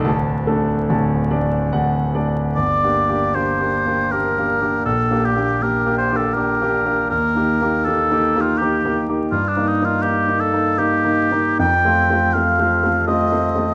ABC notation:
X:1
M:3/4
L:1/16
Q:1/4=80
K:Gm
V:1 name="Oboe"
z12 | d4 c4 B4 | A2 G2 B2 c A B4 | B4 A3 F G3 z |
F D E F G2 A2 G4 | g4 f4 e4 |]
V:2 name="Grand piano"
[D,,,D,,a]2 [A,DA]2 [D,,,D,,a]2 [A,Dd]2 [D,,,D,,^f]2 [A,Dd]2 | (3G,,,2 [B,DG]2 [B,DG]2 (3[B,DG]2 [B,DG]2 [B,DG]2 (3[B,DG]2 [B,DG]2 [B,DG]2 | (3B,,,2 [B,DG]2 [B,DG]2 (3[B,DG]2 [B,DG]2 [B,DG]2 (3[B,DG]2 [B,DG]2 [B,DG]2 | (3E,,2 [B,EG]2 [B,EG]2 (3[B,EG]2 [B,EG]2 [B,EG]2 (3[B,EG]2 [B,EG]2 [B,EG]2 |
(3G,,2 [B,E]2 [B,E]2 (3[B,E]2 [B,E]2 [B,E]2 (3[B,E]2 [B,E]2 [B,E]2 | (3F,,2 [A,CF]2 [A,CF]2 (3[A,CF]2 [A,CF]2 [A,CF]2 (3[A,CF]2 [A,CF]2 [A,CF]2 |]